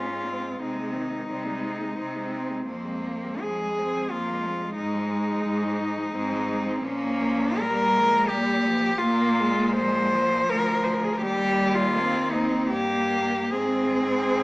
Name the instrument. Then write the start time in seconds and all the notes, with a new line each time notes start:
cello
Already playing: G#2 C#4 F4
0.07 G#3
0.24 C4
0.42 G#3
0.60 C3 G#3 C4 D#4
0.76 G#3
0.94 D#3 C4
1.11 G#3
1.28 C3 G3 C4
1.46 G#3
1.63 G#3 C4
1.81 G#3
1.98 C3 C4
2.16 G#3
2.32 C4
2.49 G#3
2.66 F2 F3 A#3 C4
2.85 G#3
3.04 F3
3.24 G#3
3.41 F2 F3 G#3 G#4
3.61 G#3
3.78 F3 C4
3.96 G#3
4.10 F2 F3 A#3 F4
4.29 G#3
4.46 F3 G#3
4.62 G#3
4.76 G#2 G#3 D#4
4.94 F3
5.10 G#3
5.27 F3
5.44 G#2 G#3
5.62 F3
5.80 G#3
5.97 F3
6.13 G#2 G#3 C4
6.32 F3
6.47 G#3 C4
6.66 F3
6.81 A#2 F3 A#3 C#4
7.59 G3 A#4
7.96 F3 G#3
8.29 G3 A#3 G4
8.66 F3
8.99 A#2 A#3 F4
9.40 G#3
9.77 F3 G#3 C5
10.14 F3
10.50 D2 A#4
10.84 C5
10.94 A#4
11.04 G#4
11.13 A#4
11.21 D#2 G3 G4
11.75 F4
11.95 A#3 C4
12.31 A#3 C4 D#4
12.70 G2 A#3 G4
13.52 G#2 C4 G#4